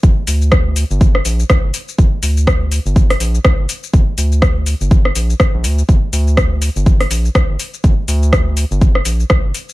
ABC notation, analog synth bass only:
X:1
M:4/4
L:1/16
Q:"Swing 16ths" 1/4=123
K:Gm
V:1 name="Analog synth bass" clef=bass
G,,, z D,,4- D,, G,,,3 B,,, z C,, G,,, z2 | G,,, z D,,4- D,, G,,,3 B,,, z C,, G,,, z2 | G,,, z D,,4- D,, G,,,3 B,,, z2 B,,, D,, z | G,,, z D,,4- D,, G,,,3 B,,, z C,, G,,, z2 |
G,,, z D,,4- D,, G,,,3 B,,, z C,, G,,, z2 |]